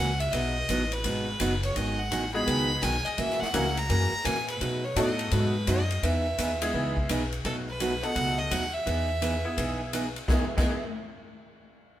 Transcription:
Already playing: upright bass C#2, fiddle F#5
0.20 fiddle E5, ride
0.33 upright bass B1, steel-string acoustic guitar B2 F#3 B3 D#4 F#4, fiddle D#5, kick, ride
0.69 upright bass A1, steel-string acoustic guitar B2 F#3 B3 D#4 F#4, kick, hi-hat pedal, ride
0.92 fiddle B4, ride
1.04 upright bass G#1, steel-string acoustic guitar B2 F#3 B3 D#4 F#4, kick, ride
1.40 upright bass F#1, steel-string acoustic guitar B2 F#3 B3 D#4 F#4, kick, hi-hat pedal, ride
1.63 fiddle C#5, ride
1.76 upright bass G#1, steel-string acoustic guitar D#3 F#3 B3 D#4 G#4, fiddle D#5, kick, ride
1.99 fiddle F#5
2.11 upright bass A1, steel-string acoustic guitar D#3 F#3 B3 D#4 G#4, kick, hi-hat pedal, ride
2.34 honky-tonk piano G#3 B3 D#4 F#4 G#4, fiddle B5
2.46 upright bass C#2, steel-string acoustic guitar D#3 F#3 B3 D#4 G#4, kick, ride
2.82 upright bass B1, steel-string acoustic guitar D#3 F#3 B3 D#4 G#4, fiddle G#5, kick, hi-hat pedal, ride
3.05 fiddle D#5, muted upright bass stroke, ride
3.18 upright bass A#1, steel-string acoustic guitar E3 A#3 C#4 F#4 A#4, fiddle E5, kick, ride
3.30 snare
3.40 fiddle F#5, muted upright bass stroke, snare
3.53 upright bass C#2, steel-string acoustic guitar E3 A#3 C#4 F#4 A#4, honky-tonk piano A#3 C#4 E4 F#4 A#4, kick, hi-hat pedal, ride
3.77 fiddle A#5, ride
3.89 upright bass F#2, steel-string acoustic guitar E3 A#3 C#4 F#4 A#4, kick, ride
4.12 muted upright bass stroke
4.24 upright bass A#2, steel-string acoustic guitar E3 A#3 C#4 F#4 A#4, fiddle G#5, kick, hi-hat pedal, ride
4.48 fiddle B4, ride
4.60 steel-string acoustic guitar B2 F#3 A3 D#4 F#4, upright bass B2, kick, ride
4.84 fiddle C#5
4.96 upright bass A2, steel-string acoustic guitar B2 F#3 A3 D#4 F#4, honky-tonk piano A3 B3 D#4 F#4 A4, fiddle D#5, kick, hi-hat pedal, ride
5.19 ride
5.31 upright bass G#2, steel-string acoustic guitar B2 F#3 A3 D#4 F#4, fiddle B4, kick, ride
5.67 upright bass F#2, steel-string acoustic guitar B2 F#3 A3 D#4 F#4, fiddle D#5, kick, hi-hat pedal, ride
5.91 ride
6.03 upright bass E2, steel-string acoustic guitar E3 B3 D#4 G#4, fiddle E5, kick, ride
6.38 upright bass D#2, steel-string acoustic guitar E3 B3 D#4 G#4, kick, hi-hat pedal, ride
6.62 honky-tonk piano G#3 B3 E4 G#4, ride
6.74 upright bass C#2, steel-string acoustic guitar E3 B3 D#4 G#4, kick
6.97 kick
7.09 upright bass B1, steel-string acoustic guitar E3 B3 D#4 G#4, kick, hi-hat pedal, ride
7.32 ride
7.45 upright bass B1, steel-string acoustic guitar B2 F#3 A3 D#4 F#4, fiddle A4, kick, ride
7.69 fiddle B4
7.80 steel-string acoustic guitar B2 F#3 A3 D#4 F#4, hi-hat pedal, ride
8.03 honky-tonk piano B3 D#4 F#4 A4, fiddle F#5, ride
8.15 upright bass C#2, steel-string acoustic guitar B2 F#3 A3 D#4 F#4, kick, ride
8.39 fiddle D#5
8.51 upright bass D#2, steel-string acoustic guitar B2 F#3 A3 D#4 F#4, fiddle F#5, hi-hat pedal, ride
8.74 fiddle E5
8.86 upright bass E2, steel-string acoustic guitar E3 B3 D#4 G#4, kick, ride
9.22 steel-string acoustic guitar E3 B3 D#4 G#4, hi-hat pedal, ride
9.45 honky-tonk piano B3 E4 G#4
9.57 upright bass B1, steel-string acoustic guitar E3 B3 D#4 G#4, kick, ride
9.93 steel-string acoustic guitar E3 B3 D#4 G#4, hi-hat pedal, ride
10.16 ride
10.28 upright bass E2, steel-string acoustic guitar E3 B3 D#4 G#4, honky-tonk piano B3 D#4 E4 G#4, kick, snare
10.57 upright bass E2, steel-string acoustic guitar E3 B3 D#4 G#4, honky-tonk piano B3 D#4 E4 G#4, kick, snare, crash

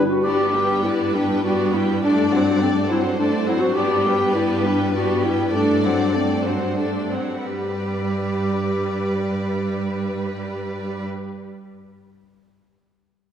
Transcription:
Already playing: clarinet E4
0.10 clarinet F#4
0.23 cello section G2, viola section B3 D4, clarinet G4, violin section G4 B4 D5
0.53 viola section G3 B3, violin section B4 G5
0.83 viola section B3 D4, clarinet E4, violin section G4 D5
1.12 viola section G3 B3, clarinet D4, violin section B4 G5
1.42 viola section B3 D4, clarinet F#4, violin section G4 D5
1.73 viola section G3 B3, clarinet E4, violin section B4 G5
2.02 viola section A3 D4, clarinet D4, violin section A4 D5
2.32 viola section F#3 C4, violin section C5 F#5
2.60 viola section A3 D4, clarinet C4, violin section A4 D5
2.90 viola section F#3 C4, clarinet E4, violin section C5 F#5
3.18 viola section A3 D4, clarinet D4, violin section A4 D5
3.46 viola section F#3 C4, clarinet E4, violin section C5 F#5
3.61 clarinet F#4
3.75 cello section G2, viola section B3 D4, violin section G4 B4 D5, clarinet G4
4.05 viola section G3 B3, violin section B4 G5
4.34 viola section B3 D4, clarinet E4, violin section G4 D5
4.63 viola section G3 B3, clarinet D4, violin section B4 G5
4.93 viola section B3 D4, clarinet F#4, violin section G4 D5
5.22 viola section G3 B3, clarinet E4, violin section B4 G5
5.52 viola section A3 D4, violin section A4 D5
5.56 clarinet D4
5.82 viola section F#3 C4, violin section C5 F#5
6.13 viola section A3 D4, clarinet C4, violin section A4 D5
6.45 viola section F#3 C4, clarinet D4, violin section C5 F#5
6.77 viola section A3 D4, violin section A4 D5
7.11 viola section F#3 C4, violin section C5 F#5
7.42 cello section G2, viola section G3, violin section B4 D5
7.46 clarinet G4

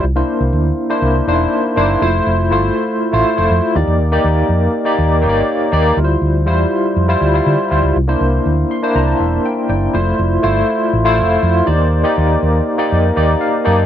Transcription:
0.03 fingered electric bass C2
0.16 tine electric piano A#3 D4 E4 C5
0.40 fingered electric bass C2
0.53 fingered electric bass D2
0.89 tine electric piano A#3 D4 E4 C5
1.02 fingered electric bass C2
1.27 fingered electric bass E1, tine electric piano A#3 D4 D#4 C5
1.34 tine electric piano E4
1.76 fingered electric bass F#1, tine electric piano A#3 D4 E4 C5
2.01 fingered electric bass F1, tine electric piano A3 E4 F4 C5
2.27 fingered electric bass F1
2.51 fingered electric bass G1, tine electric piano A3 E4 F4 C5
3.12 fingered electric bass A1, tine electric piano A3 E4 F4 C5
3.37 fingered electric bass F1, tine electric piano A3 E4 F4 C5
3.51 fingered electric bass F2
3.75 fingered electric bass D#2, tine electric piano A#3 D#4 G4 D5
3.87 fingered electric bass E2
4.00 fingered electric bass D#2
4.12 tine electric piano A#3 D#4 G4 D5
4.24 fingered electric bass D#2
4.49 fingered electric bass F2
4.85 tine electric piano A#3 D#4 G4 D5
4.99 fingered electric bass D#2
5.22 fingered electric bass G1, tine electric piano A#3 D#4 G4 C#5
5.29 tine electric piano D5
5.72 fingered electric bass D#2, tine electric piano A#3 D#4 G4 D5
5.97 fingered electric bass D2, tine electric piano G3 E4 F4 A#4
6.04 tine electric piano C5
6.22 fingered electric bass D2
6.46 fingered electric bass E2, tine electric piano G3 E4 F4 C5
6.96 fingered electric bass F2
7.08 tine electric piano G3 E4 F4 C5
7.21 fingered electric bass D2
7.34 tine electric piano G3 E4 F4 C5
7.46 fingered electric bass D3
7.70 fingered electric bass D2, tine electric piano G3 E4 F4 C5
7.83 fingered electric bass C#2
7.96 fingered electric bass C2
8.08 tine electric piano A#3 D4 E4 C5
8.21 fingered electric bass C2
8.46 fingered electric bass D2
8.71 tine electric piano C6
8.82 tine electric piano A#3 D4 E4 C5
8.95 fingered electric bass C2, tine electric piano A#5
9.07 tine electric piano A5
9.20 fingered electric bass E1, tine electric piano E5
9.45 tine electric piano G5
9.69 fingered electric bass F#1, tine electric piano D5 G5
9.93 fingered electric bass F1, tine electric piano A3 E4 F4 C5
10.19 fingered electric bass F1
10.42 fingered electric bass G1, tine electric piano A3 E4 F4 C5
10.93 fingered electric bass A1
11.05 tine electric piano A3 E4 F4 C5
11.18 fingered electric bass F1, tine electric piano F5
11.43 fingered electric bass F2, tine electric piano C5
11.66 fingered electric bass D#2, tine electric piano A#3 D#4 G4 D5
12.03 tine electric piano A#3 D#4 G4 D5
12.18 fingered electric bass D#2
12.43 fingered electric bass D#2
12.78 tine electric piano A#3 D#4 G4 D5
12.92 fingered electric bass F2
13.16 fingered electric bass D#2, tine electric piano A#3 D#4 G4 D5
13.41 tine electric piano F5
13.65 fingered electric bass F#2, tine electric piano A#3 D#4 G4 D5 A5

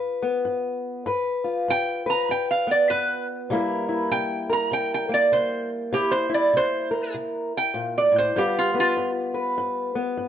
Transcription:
Already playing: steel-string acoustic guitar G2 F4 B4
0.22 steel-string acoustic guitar B3
0.45 steel-string acoustic guitar G2
1.06 steel-string acoustic guitar G2 B4
1.44 steel-string acoustic guitar F4
1.68 steel-string acoustic guitar G2, resonator guitar played with a steel bar G5
2.06 steel-string acoustic guitar B4, resonator guitar played with a steel bar A#5
2.29 steel-string acoustic guitar G2, resonator guitar played with a steel bar G5
2.51 resonator guitar played with a steel bar F5
2.67 steel-string acoustic guitar B3
2.71 resonator guitar played with a steel bar D5
2.90 steel-string acoustic guitar G2, resonator guitar played with a steel bar B4
3.50 steel-string acoustic guitar C3 G3 A#3 E4 A#4
3.89 steel-string acoustic guitar E4
4.11 steel-string acoustic guitar C3, resonator guitar played with a steel bar G5
4.50 steel-string acoustic guitar A#4, resonator guitar played with a steel bar A#5
4.71 steel-string acoustic guitar C3, resonator guitar played with a steel bar G5
4.94 resonator guitar played with a steel bar G5
5.09 steel-string acoustic guitar A#3
5.14 resonator guitar played with a steel bar D5
5.32 steel-string acoustic guitar C3, resonator guitar played with a steel bar C5
5.93 steel-string acoustic guitar C3 E4, resonator guitar played with a steel bar G4
6.11 resonator guitar played with a steel bar C5
6.29 steel-string acoustic guitar E4
6.34 resonator guitar played with a steel bar D5
6.53 steel-string acoustic guitar C3, resonator guitar played with a steel bar C5
6.91 steel-string acoustic guitar A#4
7.14 steel-string acoustic guitar C3
7.57 resonator guitar played with a steel bar G5
7.74 steel-string acoustic guitar A#2
7.98 resonator guitar played with a steel bar D5
8.12 steel-string acoustic guitar A2
8.18 resonator guitar played with a steel bar C5
8.36 steel-string acoustic guitar G2 G3 B3 F4, resonator guitar played with a steel bar G4
8.59 resonator guitar played with a steel bar F4
8.74 steel-string acoustic guitar B3
8.80 resonator guitar played with a steel bar F4
8.97 steel-string acoustic guitar G2
9.34 steel-string acoustic guitar B4
9.58 steel-string acoustic guitar G2
9.95 steel-string acoustic guitar B3
10.17 steel-string acoustic guitar G2

